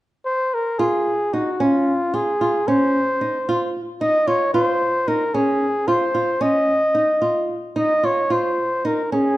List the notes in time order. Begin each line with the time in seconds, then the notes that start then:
0.26 C5
0.54 A#4
0.79 F4 G#4
1.33 D#4 F#4
1.60 C#4 F4
2.14 F4 G#4
2.41 F4
2.68 C#4 C5
3.21 D#4
3.49 F4
4.01 D#4 D#5
4.27 F4 C#5
4.54 F4 C5
5.08 D#4 A#4
5.34 C#4 G#4
5.88 F4 C5
6.15 F4
6.41 C#4 D#5
6.95 D#4
7.22 F4
7.76 D#4 D#5
8.03 F4 C#5
8.30 F4 C5
8.85 D#4 A#4
9.12 C#4 G#4